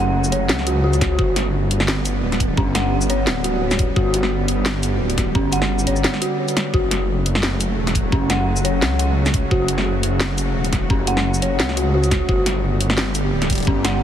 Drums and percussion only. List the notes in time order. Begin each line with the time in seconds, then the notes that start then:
0.24 shaker
0.32 closed hi-hat
0.49 snare
0.59 snare
0.67 closed hi-hat
0.93 closed hi-hat, shaker
1.01 kick, snare, closed hi-hat
1.19 kick
1.36 snare, closed hi-hat
1.71 closed hi-hat
1.80 snare
1.88 snare
2.05 closed hi-hat, shaker
2.32 snare, closed hi-hat
2.40 kick, closed hi-hat
2.57 kick
2.75 snare, closed hi-hat
3.02 shaker
3.10 closed hi-hat
3.27 snare
3.44 closed hi-hat
3.71 snare, closed hi-hat, shaker
3.79 kick, closed hi-hat
3.96 kick
4.14 closed hi-hat
4.23 snare
4.48 closed hi-hat
4.66 snare
4.83 closed hi-hat, shaker
5.10 closed hi-hat
5.18 kick, snare, closed hi-hat
5.35 kick
5.53 closed hi-hat, shaker
5.62 snare
5.79 shaker
5.87 closed hi-hat
5.96 shaker
6.04 snare
6.14 snare
6.22 closed hi-hat
6.48 closed hi-hat, shaker
6.57 snare, closed hi-hat
6.74 kick
6.91 snare, closed hi-hat
7.26 closed hi-hat
7.35 snare
7.43 snare
7.61 closed hi-hat, shaker
7.87 snare, closed hi-hat
7.95 kick, closed hi-hat
8.12 kick
8.30 snare, closed hi-hat
8.57 shaker
8.65 closed hi-hat
8.82 snare
8.99 closed hi-hat
9.26 snare, closed hi-hat, shaker
9.34 kick, closed hi-hat
9.51 kick
9.68 closed hi-hat
9.78 snare
10.03 closed hi-hat
10.20 snare
10.38 closed hi-hat, shaker
10.65 closed hi-hat
10.73 kick, snare, closed hi-hat
10.90 kick
11.07 closed hi-hat
11.17 snare
11.34 shaker
11.42 closed hi-hat
11.60 snare
11.69 snare
11.77 closed hi-hat
12.04 closed hi-hat, shaker
12.11 kick, snare, closed hi-hat
12.29 kick
12.46 snare, closed hi-hat
12.81 closed hi-hat
12.90 snare
12.98 snare
13.15 closed hi-hat, shaker
13.42 snare, closed hi-hat
13.50 kick, closed hi-hat
13.52 closed hi-hat
13.55 closed hi-hat
13.58 closed hi-hat
13.60 closed hi-hat
13.63 closed hi-hat
13.65 kick, closed hi-hat
13.85 snare, closed hi-hat